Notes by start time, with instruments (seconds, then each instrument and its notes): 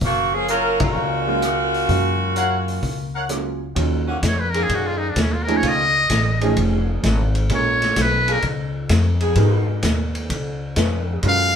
0.01 upright bass F#1, saxophone section C#3 F3 A#3 F#4, kick, open hi-hat
0.34 saxophone section F3 A#3 C#4 G#4
0.48 saxophone section F#3 C#4 F4 A#4, trumpet section A#4 C#5 F5 A#5, closed hi-hat
0.80 saxophone section C#3 A#3 F4 F#4, kick, ride
0.95 upright bass C#2
1.27 grand piano F#3 G#3 A#3 C#4 F4
1.42 cross-stick, closed hi-hat
1.74 open hi-hat
1.88 upright bass F#2, grand piano F#3 G#3 A#3 C#4 F5, kick, open hi-hat
2.36 trumpet section A#4 C#5 F5 F#5, closed hi-hat
2.68 open hi-hat
2.83 upright bass C#2, kick, open hi-hat
3.15 trumpet section A#4 C#5 F5 F#5
3.29 grand piano F#3 G#3 A#3 C#4 F4, cross-stick, closed hi-hat
3.75 upright bass D#2, grand piano D#3 F#3 A#3 C#4 F4, kick, ride
4.08 saxophone section D#3 A#3 C#4 F#4
4.23 upright bass F2, kick, snare, hi-hat pedal, ride
4.28 muted trumpet C#5
4.40 muted trumpet B4
4.50 muted trumpet A#4
4.54 saxophone section D#3 A#3 C#4 G#4, ride
4.63 muted trumpet G#4
4.69 upright bass F#2, kick, ride
4.75 muted trumpet F#4
4.87 muted trumpet F4
4.98 muted trumpet D#4
5.10 muted trumpet D4
5.16 upright bass D#2, kick, snare, hi-hat pedal, ride
5.22 muted trumpet C#4
5.34 muted trumpet F4
5.43 grand piano F3, muted trumpet A#4
5.47 grand piano A3 C#4 D#4 G#4, ride
5.57 muted trumpet C#5
5.63 upright bass C#2, saxophone section D#3 A3 C#4 F4, kick, ride
5.68 muted trumpet D#5
6.10 upright bass A1, kick, snare, hi-hat pedal, ride
6.41 saxophone section D#3 A3 C#4 G#4, grand piano F3 A3 C#4 D#4 G#4, ride
6.56 upright bass F1, kick, ride
7.03 upright bass G#1, kick, snare, hi-hat pedal, ride
7.35 ride
7.50 upright bass A#1, grand piano G#3 A#3 C#4 F4 A#4, kick, ride
7.55 muted trumpet C#5
7.82 snare, ride
7.96 upright bass B1, kick, snare, hi-hat pedal, ride
8.02 muted trumpet B4
8.28 saxophone section F3 A#3 C#4 G#4, ride
8.32 muted trumpet A#4
8.42 upright bass C#2, kick, ride
8.89 upright bass F2, kick, snare, hi-hat pedal, ride
9.21 saxophone section F#3 B3 D#4 G#4, ride
9.36 upright bass G#2, grand piano G#3 B3 D#4 F#4 A#4, kick, ride
9.83 upright bass D#2, kick, snare, hi-hat pedal, ride
10.15 ride
10.29 upright bass C#2, kick, ride
10.76 upright bass F2, saxophone section F3 C#4 D#4 B4, kick, snare, hi-hat pedal, ride
11.23 upright bass F#2, grand piano G#3 C#4 F4 F#4 A#4, kick, ride
11.28 muted trumpet F5